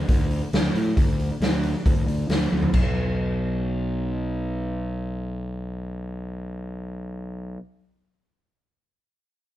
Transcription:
0.08 picked electric bass D2, kick, open hi-hat
0.31 open hi-hat
0.53 picked electric bass D2, snare, open hi-hat
0.75 picked electric bass A2, open hi-hat
0.97 picked electric bass D2, kick, open hi-hat
1.20 open hi-hat
1.41 picked electric bass D2, snare, open hi-hat
1.63 open hi-hat
1.86 picked electric bass D2, kick, open hi-hat
2.07 picked electric bass D2, open hi-hat
2.29 picked electric bass D2, snare, open hi-hat
2.52 picked electric bass D2, high tom
2.62 floor tom
2.73 picked electric bass B1, kick, crash

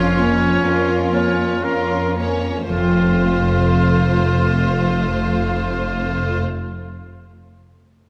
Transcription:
Already playing: double bass section F1, cello section F2, harp F3 F4 F5, viola section C#4, oboe C#4, violin section F4 A#4
0.17 viola section A#3, violin section C#4 C#5, harp F4
0.63 cello section F2, viola section C#4, violin section F4 A#4, harp A#4
1.13 viola section A#3, violin section C#4 C#5, harp F4, oboe F4
1.62 cello section F2, viola section C#4, violin section F4 A#4, oboe A#4, harp F5
2.16 viola section A#3, violin section C#4 C#5, harp A#4
2.68 double bass section F1, cello section F2, harp F3, viola section A3, oboe F4, violin section F4 C5
2.76 harp C4
2.83 harp F4
2.90 harp A4
2.97 harp F5

